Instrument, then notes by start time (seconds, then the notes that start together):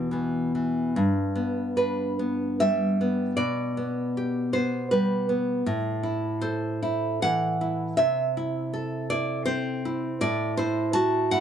nylon-string guitar
Already playing: E2 B2 E3 B3
0.11 E3 B3
0.55 E3
0.96 G2
1.35 B3
1.77 D4 B4
2.19 B3
2.60 G3 E5
3.01 B3
3.37 B2 D5
3.77 B3
4.17 G4
4.53 B3 C5
4.91 G3 B4
5.29 B3
5.66 A2
6.03 E4
6.41 A4 C5
6.83 E4
7.22 E3 F#5
7.61 E4
7.97 C3 E5
8.37 E4
8.74 A4
9.10 E4 D5
9.45 C4 C5
9.85 E4
10.21 A2 D5
10.57 E4 C5
10.93 F#4 A5
11.31 E4 F#5